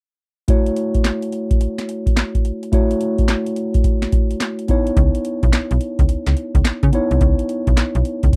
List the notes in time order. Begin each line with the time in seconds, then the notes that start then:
0.48 A3 E4 F#4 C#5, kick, closed hi-hat
0.66 closed hi-hat
0.76 closed hi-hat
0.94 kick, closed hi-hat
1.04 snare, clap, closed hi-hat
1.22 closed hi-hat
1.32 closed hi-hat
1.51 kick, closed hi-hat
1.61 closed hi-hat
1.78 snare, closed hi-hat
1.89 closed hi-hat
2.06 kick, closed hi-hat
2.17 snare, clap, closed hi-hat
2.35 kick, closed hi-hat
2.45 closed hi-hat
2.63 closed hi-hat
2.72 A3 E4 F#4 C#5, kick, closed hi-hat
2.91 closed hi-hat
3.01 closed hi-hat
3.18 kick, closed hi-hat
3.28 snare, clap, closed hi-hat
3.46 closed hi-hat
3.56 closed hi-hat
3.74 kick, closed hi-hat
3.84 kick, closed hi-hat
4.02 snare, closed hi-hat
4.12 kick, closed hi-hat
4.31 closed hi-hat
4.40 snare, clap, closed hi-hat
4.59 closed hi-hat
4.68 B3 D#4 E4 C#5, kick, closed hi-hat
4.87 closed hi-hat
4.97 C#2, kick, closed hi-hat
5.15 closed hi-hat
5.25 closed hi-hat
5.43 B1, kick, closed hi-hat
5.53 snare, clap, closed hi-hat
5.71 B1, closed hi-hat
5.81 closed hi-hat
5.99 C#2, kick, closed hi-hat
6.09 C#2, closed hi-hat
6.26 C#2, snare, closed hi-hat
6.37 closed hi-hat
6.55 C#2, kick, closed hi-hat
6.65 snare, clap, closed hi-hat
6.83 C#3, kick, closed hi-hat
6.93 B3 D#4 E4 C#5, closed hi-hat
7.11 C2, closed hi-hat
7.21 C#2, kick, closed hi-hat
7.39 closed hi-hat
7.49 closed hi-hat
7.67 B1, kick, closed hi-hat
7.77 snare, clap, closed hi-hat
7.95 B1, closed hi-hat
8.05 closed hi-hat
8.23 C#2, kick, closed hi-hat
8.33 C#2, kick